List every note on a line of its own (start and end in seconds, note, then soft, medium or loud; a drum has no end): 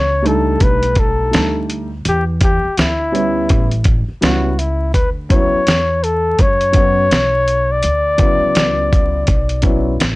0.00 0.57 C#2 medium
0.00 0.29 C#5 loud
0.22 1.26 G3 medium
0.22 1.27 A3 medium
0.22 1.27 D4 medium
0.22 1.27 D#4 medium
0.22 closed hi-hat medium
0.27 0.64 A4 medium
0.60 1.30 B1 medium
0.60 1.01 B4 loud
0.60 kick medium
0.60 closed hi-hat medium
0.83 closed hi-hat soft
0.95 kick medium
0.95 closed hi-hat medium
0.99 1.70 A4 medium
1.31 2.02 D2 medium
1.31 1.86 G3 medium
1.31 1.86 A3 medium
1.31 1.86 D4 medium
1.31 1.87 D#4 medium
1.31 snare loud
1.31 closed hi-hat medium
1.70 closed hi-hat medium
2.05 2.61 E2 medium
2.05 2.24 G4 loud
2.05 closed hi-hat medium
2.41 2.80 G4 loud
2.41 kick medium
2.41 closed hi-hat medium
2.64 muted upright bass stroke soft
2.77 3.46 D2 medium
2.77 3.87 E4 medium
2.77 snare loud
2.77 closed hi-hat medium
3.12 3.67 G3 medium
3.12 3.67 B3 medium
3.12 3.67 C#4 medium
3.12 3.68 E4 medium
3.12 closed hi-hat medium
3.49 4.06 A1 loud
3.49 kick medium
3.49 closed hi-hat medium
3.71 closed hi-hat soft
3.84 kick medium
3.84 closed hi-hat medium
4.08 muted upright bass stroke soft
4.21 4.91 C#2 medium
4.21 4.49 G3 medium
4.21 4.50 B3 medium
4.21 4.50 C#4 medium
4.21 4.50 E4 medium
4.21 4.60 F#4 medium
4.21 snare loud
4.21 closed hi-hat medium
4.59 4.94 E4 medium
4.59 closed hi-hat medium
4.94 5.50 D2 medium
4.94 5.10 B4 medium
4.94 kick loud
4.94 closed hi-hat medium
5.29 5.58 F#3 medium
5.29 5.58 B3 medium
5.29 5.58 C#4 medium
5.29 5.59 E4 medium
5.29 6.05 C#5 loud
5.29 kick loud
5.29 closed hi-hat medium
5.54 muted upright bass stroke soft
5.67 6.36 E2 medium
5.67 snare loud
5.67 closed hi-hat medium
6.04 6.42 A4 medium
6.04 closed hi-hat medium
6.39 7.08 F#2 loud
6.39 7.73 C#5 loud
6.39 kick medium
6.39 closed hi-hat medium
6.61 closed hi-hat soft
6.72 7.02 F#3 medium
6.72 7.02 B3 medium
6.72 7.02 C#4 medium
6.72 7.03 F#4 medium
6.72 kick medium
6.72 closed hi-hat medium
7.11 7.80 B1 medium
7.11 snare loud
7.11 closed hi-hat medium
7.48 closed hi-hat medium
7.72 10.01 D5 loud
7.83 8.39 D2 medium
7.83 closed hi-hat medium
8.18 9.22 C#3 medium
8.18 9.22 F#3 medium
8.18 9.22 B3 medium
8.18 9.23 E4 medium
8.18 kick loud
8.18 closed hi-hat medium
8.42 muted upright bass stroke soft
8.55 9.25 C#2 medium
8.55 snare medium
8.55 closed hi-hat medium
8.93 kick medium
8.93 closed hi-hat medium
9.27 9.97 B1 medium
9.27 kick medium
9.27 closed hi-hat medium
9.49 closed hi-hat soft
9.62 9.91 F#3 medium
9.62 9.92 B3 medium
9.62 9.92 C#4 medium
9.62 9.92 E4 medium
9.62 kick medium
9.62 closed hi-hat medium
10.00 10.16 A1 medium
10.00 snare loud
10.00 closed hi-hat medium